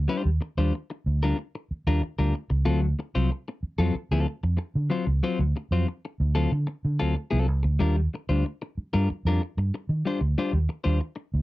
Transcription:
0.08 0.29 G3 medium
0.08 0.23 D4 medium
0.08 0.23 F4 medium
0.08 0.23 C5 loud
0.24 0.38 D#2 medium
0.24 muted clean electric guitar stroke soft
0.41 muted clean electric guitar stroke soft
0.57 0.70 D#2 medium
0.57 0.73 G3 medium
0.57 0.73 D4 medium
0.57 0.73 F4 medium
0.57 0.73 C5 medium
0.74 muted clean electric guitar stroke soft
0.90 muted clean electric guitar stroke soft
1.06 1.32 D2 medium
1.23 1.36 G3 medium
1.23 1.37 D4 medium
1.23 1.37 F4 medium
1.23 1.38 A#4 medium
1.38 muted clean electric guitar stroke soft
1.55 muted clean electric guitar stroke soft
1.71 muted fingered electric bass stroke soft
1.87 2.00 D#2 medium
1.87 2.02 G3 medium
1.87 2.02 D4 medium
1.87 2.02 F4 medium
1.87 2.02 A#4 medium
2.03 muted fingered electric bass stroke soft
2.19 2.32 D2 medium
2.19 2.33 G3 medium
2.19 2.34 D4 medium
2.19 2.34 F4 medium
2.19 2.34 A#4 medium
2.35 muted clean electric guitar stroke soft
2.50 2.64 C#2 medium
2.50 muted clean electric guitar stroke soft
2.65 2.93 D2 loud
2.65 2.85 F#3 medium
2.65 2.81 C4 medium
2.65 2.81 F4 loud
2.65 2.80 A4 medium
2.99 muted clean electric guitar stroke soft
3.15 3.28 C2 medium
3.15 3.30 F#3 medium
3.15 3.30 C4 medium
3.15 3.30 F4 medium
3.15 3.30 C5 medium
3.31 muted clean electric guitar stroke soft
3.48 muted clean electric guitar stroke soft
3.63 muted fingered electric bass stroke soft
3.78 3.92 F2 medium
3.78 3.94 F#3 medium
3.78 3.95 C4 medium
3.78 3.94 F4 medium
3.78 3.95 A4 medium
3.95 muted clean electric guitar stroke soft
3.95 muted fingered electric bass stroke soft
4.11 4.24 D2 medium
4.11 4.26 F#3 medium
4.11 4.27 C4 medium
4.11 4.27 F4 medium
4.11 4.27 A4 medium
4.27 muted clean electric guitar stroke soft
4.43 4.57 F2 medium
4.43 muted clean electric guitar stroke soft
4.57 muted clean electric guitar stroke soft
4.75 4.89 D3 loud
4.90 5.06 F#3 medium
4.90 5.06 C4 medium
4.90 5.06 F4 medium
4.90 5.06 C5 medium
5.07 5.20 C#2 medium
5.07 muted clean electric guitar stroke soft
5.23 5.43 F#3 medium
5.23 5.40 C4 medium
5.23 5.39 F4 medium
5.23 5.40 C5 medium
5.39 5.53 D2 medium
5.39 muted clean electric guitar stroke soft
5.56 muted clean electric guitar stroke soft
5.71 5.84 F2 medium
5.71 5.87 F#3 medium
5.71 5.87 C4 medium
5.71 5.88 F4 medium
5.71 5.87 C5 medium
5.88 muted clean electric guitar stroke soft
6.05 muted clean electric guitar stroke soft
6.20 6.46 D2 medium
6.35 6.51 F#3 medium
6.35 6.51 C4 medium
6.35 6.52 F4 medium
6.35 6.52 A4 medium
6.52 6.65 D3 loud
6.52 muted clean electric guitar stroke soft
6.67 muted clean electric guitar stroke medium
6.85 6.98 D3 loud
6.99 7.14 D2 medium
6.99 7.15 F#3 medium
6.99 7.15 C4 medium
6.99 7.15 F4 medium
6.99 7.15 A4 medium
7.31 7.48 C2 medium
7.31 7.47 F#3 medium
7.31 7.46 C4 medium
7.31 7.47 F4 medium
7.31 7.47 A4 medium
7.48 7.62 C#2 medium
7.48 muted clean electric guitar stroke soft
7.63 7.78 D2 medium
7.63 muted clean electric guitar stroke soft
7.79 8.06 D#2 loud
7.79 8.00 G3 medium
7.79 7.96 D4 medium
7.79 7.96 F4 medium
7.79 7.96 A#4 medium
7.97 muted clean electric guitar stroke soft
8.14 muted clean electric guitar stroke soft
8.29 8.42 D2 medium
8.29 8.44 G3 medium
8.29 8.45 D4 medium
8.29 8.44 F4 medium
8.29 8.44 C5 medium
8.45 muted clean electric guitar stroke soft
8.62 muted clean electric guitar stroke medium
8.78 muted fingered electric bass stroke medium
8.93 9.07 G2 medium
8.93 9.08 G3 medium
8.93 9.08 D4 medium
8.93 9.09 F4 medium
8.93 9.09 A#4 medium
9.09 muted clean electric guitar stroke soft
9.09 muted fingered electric bass stroke soft
9.25 9.38 F2 medium
9.25 9.41 G3 medium
9.25 9.41 D4 medium
9.25 9.42 F4 medium
9.25 9.42 A#4 medium
9.42 muted clean electric guitar stroke soft
9.57 9.70 G2 medium
9.57 muted clean electric guitar stroke soft
9.74 muted clean electric guitar stroke soft
9.89 10.02 D#3 loud
10.05 10.21 G3 medium
10.05 10.21 D4 medium
10.05 10.21 F4 medium
10.05 10.21 C5 medium
10.21 10.34 D2 medium
10.21 muted clean electric guitar stroke soft
10.38 10.57 G3 medium
10.38 10.53 D4 medium
10.38 10.52 F4 medium
10.38 10.53 C5 medium
10.53 10.66 D#2 medium
10.53 muted clean electric guitar stroke soft
10.69 muted clean electric guitar stroke medium
10.84 10.99 D#2 medium
10.84 10.99 G3 soft
10.84 10.99 D4 medium
10.84 11.00 F4 medium
10.84 11.00 C5 medium
11.00 muted clean electric guitar stroke soft
11.16 muted clean electric guitar stroke soft
11.34 11.42 D2 medium

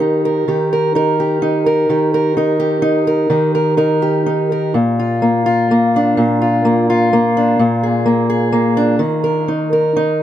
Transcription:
0.00 0.47 D#3 medium
0.00 0.95 D#4 medium
0.00 0.48 G4 medium
0.00 0.25 A#4 soft
0.25 0.72 A#4 soft
0.48 1.89 D#3 medium
0.48 1.19 G4 soft
0.73 0.96 A#4 soft
0.95 1.42 D#4 medium
0.95 1.66 A#4 medium
1.20 1.90 G4 soft
1.42 2.36 D#4 medium
1.66 2.14 A#4 medium
1.89 3.29 D#3 medium
1.89 2.59 G4 soft
2.14 2.37 A#4 medium
2.37 2.81 D#4 medium
2.37 3.07 A#4 medium
2.60 3.28 G4 medium
2.82 3.27 D#4 medium
3.07 3.54 A#4 medium
3.30 4.74 D#3 medium
3.30 4.01 G4 soft
3.55 3.77 A#4 soft
3.77 4.25 D#4 medium
3.77 4.50 A#4 medium
4.02 4.72 G4 medium
4.26 4.72 D#4 medium
4.52 4.72 A#4 soft
4.74 6.17 A#2 medium
4.99 5.46 F4 soft
5.22 5.71 A#3 medium
5.46 6.41 F4 medium
5.71 6.65 A#3 medium
5.96 7.37 D4 medium
6.17 7.58 A#2 medium
6.42 6.89 F4 medium
6.65 7.13 A#3 medium
6.90 7.57 F4 medium
7.13 7.86 A#3 medium
7.37 7.57 D4 medium
7.59 9.01 A#2 medium
7.83 8.28 G#4 soft
8.06 8.52 A#3 medium
8.30 8.98 G#4 medium
8.52 8.99 A#3 medium
8.77 8.98 D4 medium
8.99 10.23 D#3 medium
9.24 9.72 A#4 medium
9.48 9.95 D#4 medium
9.73 10.23 A#4 medium
9.96 10.23 D#4 medium

